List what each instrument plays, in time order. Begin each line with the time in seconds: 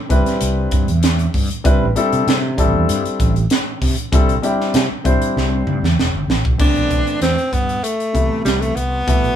0.09 fretless electric bass C2, grand piano G3 C4 D4 E4 B4, kick, closed hi-hat
0.26 snare, closed hi-hat
0.41 fretless electric bass C2, closed hi-hat
0.71 fretless electric bass G2, kick, closed hi-hat
0.88 fretless electric bass E2, closed hi-hat
1.03 snare, closed hi-hat
1.19 closed hi-hat
1.34 fretless electric bass G2, kick, open hi-hat
1.50 muted fretless electric bass stroke, closed hi-hat
1.64 fretless electric bass C2, grand piano G3 C4 D4 E4 B4, kick, closed hi-hat
1.82 fretless electric bass A1
1.96 grand piano G3 C4 D4 E4 A4, closed hi-hat
2.13 fretless electric bass C3, closed hi-hat
2.27 fretless electric bass C3, snare, closed hi-hat
2.57 fretless electric bass A1, grand piano G3 C4 D4 E4 A4, kick, closed hi-hat
2.75 fretless electric bass E2
2.89 fretless electric bass G2, closed hi-hat
3.06 muted fretless electric bass stroke, closed hi-hat
3.20 fretless electric bass A1, kick, closed hi-hat
3.36 closed hi-hat
3.50 snare, closed hi-hat
3.82 fretless electric bass C3, kick, snare, open hi-hat
3.98 closed hi-hat
4.12 fretless electric bass C2, grand piano G3 C4 D4 E4 A4, kick, closed hi-hat
4.29 closed hi-hat
4.42 grand piano G3 C4 D4 E4 G4, closed hi-hat
4.61 snare
4.74 fretless electric bass C3, snare, closed hi-hat
4.91 muted fretless electric bass stroke
5.04 fretless electric bass C2, grand piano G3 C4 D4 E4 C5, kick, closed hi-hat
5.22 closed hi-hat
5.37 fretless electric bass C2, snare
5.67 fretless electric bass G2, mid tom
5.82 fretless electric bass E2, snare
5.97 fretless electric bass E1, snare
6.13 fretless electric bass G1
6.28 fretless electric bass A1, snare
6.45 fretless electric bass B1, kick
6.58 fretless electric bass C2, grand piano E3 A3 B3 C4 D4, tenor saxophone D4, kick, crash
6.76 fretless electric bass B1, closed hi-hat
6.91 kick, closed hi-hat
7.07 closed hi-hat
7.21 fretless electric bass E2, tenor saxophone C4, snare, closed hi-hat
7.38 closed hi-hat
7.53 fretless electric bass G2, tenor saxophone B3, kick, closed hi-hat
7.69 closed hi-hat
7.84 tenor saxophone A3, closed hi-hat
8.00 closed hi-hat
8.13 fretless electric bass C2, grand piano C3 E3 A3 B3 E4, kick, closed hi-hat
8.45 fretless electric bass C2, tenor saxophone G3, snare, closed hi-hat
8.61 tenor saxophone A3, closed hi-hat
8.76 fretless electric bass C2, tenor saxophone B3, closed hi-hat
9.07 fretless electric bass C2, grand piano B2 E3 A3 B3 E4, kick, closed hi-hat
9.24 fretless electric bass B1, closed hi-hat